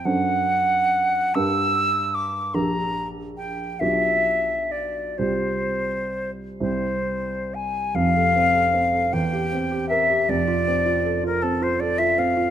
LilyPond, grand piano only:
\new Staff \with { instrumentName = "Grand piano" } { \time 6/8 \key f \major \tempo 4. = 49 <fis, d' a' c''>4. <g, d' g' bes'>4. | <bes,, d' g' bes'>4. <b,, d' f' g'>4. | <c, c' f' g'>4. <c, c' e' g'>4. | <f,, f,>16 a'16 c'16 a'16 c'16 a'16 e,16 g'16 c'16 g'16 bes'16 g'16 |
<f,, f,>16 f'16 c'16 f'16 a'16 f'16 c'16 f'16 a'16 f'16 c'16 f'16 | }